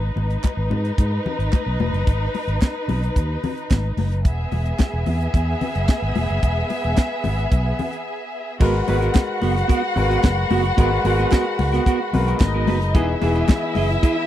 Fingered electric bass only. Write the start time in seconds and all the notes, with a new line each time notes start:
0.16 G#1
0.57 G#1
0.70 G#2
0.99 G#2
1.39 G#1
1.66 B1
1.80 E1
1.93 F#1
2.07 G#1
2.48 G#1
2.88 B1
3.16 D#2
3.71 G#1
3.97 F#1
4.25 E1
4.52 E1
4.94 E1
5.07 E2
5.34 E2
5.76 F#1
6.02 G#1
6.17 E1
6.30 F#1
6.43 E1
6.85 E1
7.26 G#1
7.52 B1
8.61 G#1
8.89 G#1
9.42 F#1
9.96 G#1
10.24 F#1
10.51 F#1
10.78 G#1
11.04 G#1
11.59 C#2
12.13 B1
12.41 G#1
12.68 F#1
12.95 E1
13.23 E1
13.76 F#1